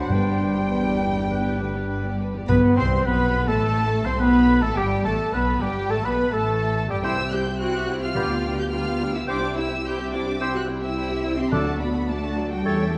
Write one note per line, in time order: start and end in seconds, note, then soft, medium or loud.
0.00 0.11 D2 medium
0.00 0.10 A3 soft
0.00 0.10 C4 soft
0.00 2.15 D4 medium
0.00 0.11 F#4 soft
0.00 1.00 C5 medium
0.00 0.11 D5 medium
0.00 0.10 F#5 medium
0.00 0.13 F#5 medium
0.09 2.24 G1 medium
0.09 0.96 G2 medium
0.09 0.63 G2 medium
0.09 2.18 G3 medium
0.09 2.15 G3 medium
0.09 0.24 B3 soft
0.09 0.25 D4 soft
0.09 0.25 B4 medium
0.09 2.19 G5 medium
0.09 2.20 G5 medium
0.25 0.40 G3 soft
0.25 0.39 B3 soft
0.25 0.41 G4 soft
0.25 0.41 D5 soft
0.40 0.54 B3 soft
0.40 0.55 D4 soft
0.40 0.56 B4 soft
0.55 0.70 G3 soft
0.55 0.69 B3 soft
0.55 0.71 G4 soft
0.55 0.71 D5 soft
0.70 1.55 E2 medium
0.70 0.83 B3 soft
0.70 0.84 D4 soft
0.70 0.85 B4 soft
0.84 1.00 G3 soft
0.84 0.98 B3 soft
0.84 1.01 G4 soft
0.84 1.01 D5 soft
0.99 1.13 B3 soft
0.99 1.14 D4 soft
0.99 1.15 B4 soft
1.14 1.29 G3 soft
1.14 1.28 B3 soft
1.14 1.30 G4 soft
1.14 1.30 D5 soft
1.29 1.43 B3 soft
1.29 1.43 D4 soft
1.29 1.44 B4 soft
1.29 2.15 B4 soft
1.44 1.59 G3 soft
1.44 1.58 B3 soft
1.44 1.59 G4 soft
1.44 1.59 D5 soft
1.59 1.89 D2 medium
1.59 1.73 B3 soft
1.59 1.74 D4 soft
1.59 1.74 B4 soft
1.74 1.89 G3 soft
1.74 1.88 B3 soft
1.74 1.90 G4 soft
1.74 1.90 D5 soft
1.88 2.33 G2 medium
1.88 2.03 B3 soft
1.88 2.03 D4 soft
1.88 2.04 B4 soft
2.04 2.19 G3 soft
2.04 2.18 B3 soft
2.04 2.20 G4 soft
2.04 2.19 D5 soft
2.20 2.33 B3 soft
2.20 2.34 D4 soft
2.20 2.35 B4 soft
2.34 2.49 E2 medium
2.34 2.49 G3 soft
2.34 2.47 B3 soft
2.34 2.49 G4 soft
2.34 2.49 D5 soft
2.48 2.56 B1 medium
2.48 3.31 G2 medium
2.48 2.75 B3 medium
2.48 2.57 B3 medium
2.48 2.79 B3 medium
2.48 2.76 B3 medium
2.48 2.62 B4 medium
2.48 2.76 B4 medium
2.48 2.58 B4 medium
2.48 2.57 B5 loud
2.48 2.55 B5 medium
2.76 3.05 C2 medium
2.76 2.85 C4 medium
2.76 3.08 C4 medium
2.76 3.06 C4 medium
2.76 3.05 C5 medium
2.76 3.07 C5 medium
2.76 2.87 C5 medium
2.76 3.05 C6 medium
3.05 3.47 B1 medium
3.05 3.48 B3 medium
3.05 3.51 B3 medium
3.05 3.49 B3 medium
3.05 3.49 B4 medium
3.05 3.47 B4 medium
3.05 3.49 B4 medium
3.05 3.47 B5 medium
3.05 3.48 B5 medium
3.48 4.05 A1 medium
3.48 4.06 A3 medium
3.48 4.04 A3 medium
3.48 4.08 A3 medium
3.48 4.05 A3 medium
3.48 4.06 A4 medium
3.48 4.05 A4 medium
3.48 4.04 A5 medium
3.48 4.05 A5 loud
4.05 4.20 C2 medium
4.05 4.11 C4 medium
4.05 4.22 C4 medium
4.05 4.20 C4 medium
4.05 4.22 C5 medium
4.05 4.19 C5 medium
4.05 4.20 C5 medium
4.05 4.19 C6 medium
4.05 4.20 C6 medium
4.19 4.62 B1 medium
4.19 4.62 B3 medium
4.19 4.64 B3 medium
4.19 4.62 B3 medium
4.19 4.61 B4 medium
4.19 4.64 B4 medium
4.19 4.62 B4 medium
4.19 4.63 B5 medium
4.61 4.77 A1 medium
4.61 4.77 A3 medium
4.61 4.76 A3 medium
4.61 4.69 A3 medium
4.61 4.77 A3 medium
4.61 4.68 A4 medium
4.61 4.79 A4 medium
4.61 4.76 A4 medium
4.61 4.77 A5 medium
4.75 5.04 G1 medium
4.75 5.05 G3 medium
4.75 4.86 G3 medium
4.75 5.06 G3 medium
4.75 4.90 G4 medium
4.75 5.04 G4 medium
4.75 5.06 G4 medium
4.75 5.03 G5 medium
4.75 5.05 G5 medium
5.04 5.12 A1 medium
5.04 5.17 A3 medium
5.04 5.33 A3 medium
5.04 5.15 A3 medium
5.04 5.35 A4 medium
5.04 5.18 A4 medium
5.04 5.33 A4 medium
5.04 5.11 A5 medium
5.04 5.33 A5 medium
5.33 5.61 B1 medium
5.33 5.61 B3 medium
5.33 5.62 B3 medium
5.33 5.43 B3 medium
5.33 5.63 B4 medium
5.33 5.61 B4 medium
5.33 5.63 B5 medium
5.61 5.90 G1 medium
5.61 5.90 G3 medium
5.61 5.91 G3 medium
5.61 5.90 G3 medium
5.61 5.89 G4 medium
5.61 5.92 G4 medium
5.61 5.92 G5 medium
5.61 5.91 G5 medium
5.90 6.04 A1 medium
5.90 6.04 A3 medium
5.90 5.97 A3 medium
5.90 6.05 A3 medium
5.90 6.04 A4 medium
5.90 6.06 A4 medium
5.90 6.07 A4 medium
5.90 6.06 A5 medium
5.90 6.05 A5 loud
6.04 6.32 B1 medium
6.04 6.32 B3 medium
6.04 6.18 B3 medium
6.04 6.33 B3 medium
6.04 6.14 B3 medium
6.04 6.33 B4 medium
6.04 6.35 B4 medium
6.04 6.33 B4 medium
6.04 6.34 B5 medium
6.04 6.33 B5 medium
6.31 6.88 A1 medium
6.31 6.88 A3 medium
6.31 6.89 A3 medium
6.31 6.92 A4 medium
6.31 6.89 A4 medium
6.31 6.89 A5 medium
6.90 7.04 G1 medium
6.90 6.95 G3 medium
6.90 7.04 G3 medium
6.90 6.96 G3 medium
6.90 7.03 G3 medium
6.90 7.03 G4 medium
6.90 7.04 G4 medium
6.90 6.96 G5 medium
6.90 7.04 G5 medium
7.03 8.12 C2 medium
7.03 7.17 G3 medium
7.03 7.23 C4 medium
7.03 8.12 C4 medium
7.03 7.12 E4 medium
7.03 7.17 E4 medium
7.03 7.23 G4 medium
7.03 11.49 G4 medium
7.03 7.17 C5 medium
7.03 7.24 C5 medium
7.03 7.17 G5 medium
7.03 7.32 E6 loud
7.03 7.30 G6 medium
7.18 7.32 C4 medium
7.18 7.32 G4 medium
7.18 7.32 E5 medium
7.32 7.47 G3 medium
7.32 7.47 E4 soft
7.32 7.41 G4 medium
7.32 7.46 C5 medium
7.32 7.46 G5 medium
7.32 7.60 G6 medium
7.46 7.60 C4 medium
7.46 7.60 G4 medium
7.46 7.60 G4 soft
7.46 7.60 E5 medium
7.58 7.73 G3 medium
7.58 7.73 E4 medium
7.58 8.01 F#4 medium
7.58 7.74 C5 medium
7.58 7.74 G5 medium
7.58 8.00 F#6 medium
7.75 7.88 C4 medium
7.75 7.88 G4 medium
7.75 7.88 E5 medium
7.89 8.02 G3 medium
7.89 8.02 E4 medium
7.89 8.02 C5 medium
7.89 8.02 G5 medium
8.01 8.16 C4 medium
8.01 8.57 F4 medium
8.01 8.16 G4 soft
8.01 8.17 G4 medium
8.01 8.16 E5 soft
8.01 8.56 F6 medium
8.15 9.28 D2 medium
8.15 8.96 D3 medium
8.15 8.29 G3 medium
8.15 8.36 B3 medium
8.15 9.29 B3 medium
8.15 8.30 D4 medium
8.15 8.29 F4 medium
8.15 8.35 G4 medium
8.15 8.35 D5 medium
8.15 8.29 G5 medium
8.15 8.42 G6 medium
8.31 8.45 B3 medium
8.31 8.45 F4 medium
8.31 8.44 G4 medium
8.31 8.44 F5 soft
8.44 8.58 G3 soft
8.44 8.58 D4 medium
8.44 8.58 F4 soft
8.44 8.58 G5 medium
8.58 8.72 B3 soft
8.58 8.72 F4 soft
8.58 8.72 G4 medium
8.58 8.73 G4 soft
8.58 8.73 F5 medium
8.58 8.64 G6 medium
8.71 8.85 G3 medium
8.71 8.85 D4 medium
8.71 9.14 F4 medium
8.71 8.85 F4 medium
8.71 8.85 G5 medium
8.71 9.13 F6 medium
8.86 9.01 B3 medium
8.86 9.00 F4 medium
8.86 9.00 G4 medium
8.86 9.01 F5 medium
9.00 9.14 G3 medium
9.00 9.14 D4 medium
9.00 9.14 F4 medium
9.00 9.14 G5 medium
9.14 9.29 B3 medium
9.14 9.20 E4 medium
9.14 9.28 F4 medium
9.14 9.28 G4 medium
9.14 9.28 F5 medium
9.14 9.29 E6 medium
9.27 11.49 C2 medium
9.27 9.41 G3 medium
9.27 9.48 C4 medium
9.27 11.49 C4 medium
9.27 9.56 D4 medium
9.27 9.41 E4 medium
9.27 9.48 G4 medium
9.27 9.41 C5 medium
9.27 9.48 C5 medium
9.27 9.41 G5 medium
9.27 9.56 D6 medium
9.27 9.54 G6 medium
9.41 9.56 C4 medium
9.41 9.56 G4 medium
9.41 9.56 E5 medium
9.55 9.70 G3 medium
9.55 9.70 E4 medium
9.55 9.84 E4 medium
9.55 9.69 C5 medium
9.55 9.70 G5 medium
9.55 9.84 E6 medium
9.69 9.85 C4 medium
9.69 9.84 G4 medium
9.69 9.84 E5 medium
9.83 9.97 G3 medium
9.83 9.98 E4 medium
9.83 10.12 G4 medium
9.83 9.97 C5 medium
9.83 9.97 G5 medium
9.83 10.13 G6 medium
9.98 10.12 C4 medium
9.98 10.12 G4 medium
9.98 10.12 E5 medium
10.13 10.27 G3 medium
10.13 10.40 D4 medium
10.13 10.27 E4 medium
10.13 10.27 C5 medium
10.13 10.27 G5 medium
10.13 10.40 D6 medium
10.26 10.40 C4 medium
10.26 10.40 G4 medium
10.26 10.41 G4 medium
10.26 10.41 E5 medium
10.40 10.53 G3 medium
10.40 10.60 C4 medium
10.40 10.53 E4 medium
10.40 10.46 E4 medium
10.40 10.60 G4 medium
10.40 10.53 C5 medium
10.40 10.61 C5 medium
10.40 10.53 G5 medium
10.40 10.55 E6 medium
10.40 10.67 G6 medium
10.54 10.69 C4 medium
10.54 10.63 F#4 medium
10.54 10.68 G4 soft
10.54 10.69 G4 medium
10.54 10.68 E5 medium
10.54 10.64 F#6 medium
10.67 10.82 G3 medium
10.67 10.82 E4 medium
10.67 10.82 C5 medium
10.67 10.82 G5 medium
10.81 10.96 C4 soft
10.81 11.37 E4 medium
10.81 10.96 G4 medium
10.81 10.96 E5 medium
10.81 11.38 E6 medium
10.96 11.09 G3 medium
10.96 11.09 E4 medium
10.96 11.10 C5 medium
10.96 11.10 G5 medium
11.11 11.25 C4 medium
11.11 11.25 G4 medium
11.11 11.25 E5 medium
11.24 11.38 G3 medium
11.24 11.38 E4 medium
11.24 11.38 C5 medium
11.24 11.38 G5 medium
11.37 11.52 C4 medium
11.37 11.52 G4 medium
11.37 11.52 E5 medium
11.37 11.52 C6 medium
11.52 12.63 D2 medium
11.52 12.33 D3 medium
11.52 11.65 F#3 medium
11.52 11.72 A3 medium
11.52 11.80 A3 medium
11.52 11.65 D4 medium
11.52 12.65 D4 medium
11.52 12.63 F#4 medium
11.52 11.65 A4 medium
11.52 11.73 A4 medium
11.52 11.65 D5 medium
11.52 11.72 D5 medium
11.52 11.80 A5 medium
11.52 11.78 F#6 medium
11.65 11.81 A3 medium
11.65 11.79 F#4 medium
11.65 11.80 F#4 medium
11.65 11.80 F#5 medium
11.79 11.94 F#3 soft
11.79 12.09 B3 medium
11.79 11.94 D4 medium
11.79 11.94 A4 medium
11.79 11.94 D5 medium
11.79 12.08 B5 medium
11.94 12.09 A3 medium
11.94 12.08 F#4 medium
11.94 12.09 F#4 medium
11.94 12.08 F#5 medium
12.08 12.21 F#3 medium
12.08 12.51 A3 medium
12.08 12.22 D4 medium
12.08 12.22 A4 medium
12.08 12.22 D5 medium
12.08 12.51 A5 medium
12.21 12.36 A3 medium
12.21 12.36 F#4 medium
12.21 12.37 F#4 medium
12.21 12.37 F#5 medium
12.37 12.51 F#3 medium
12.37 12.51 D4 medium
12.37 12.51 A4 medium
12.37 12.51 D5 medium
12.50 12.98 G3 medium
12.50 12.65 A3 medium
12.50 12.65 F#4 medium
12.50 12.65 F#5 medium
12.50 12.98 G5 medium
12.64 12.98 E2 medium
12.64 12.77 G3 medium
12.64 12.85 A3 medium
12.64 12.98 C#4 medium
12.64 12.79 G4 medium
12.64 12.77 A4 medium
12.64 12.98 A4 medium
12.64 12.85 A4 medium
12.64 12.85 C#5 medium
12.64 12.79 C#5 medium
12.64 12.92 A6 medium
12.78 12.93 A3 medium
12.78 12.93 G4 medium
12.78 12.94 A4 soft
12.78 12.94 E5 soft
12.92 12.98 G3 medium
12.92 12.98 A4 medium
12.92 12.98 C#5 medium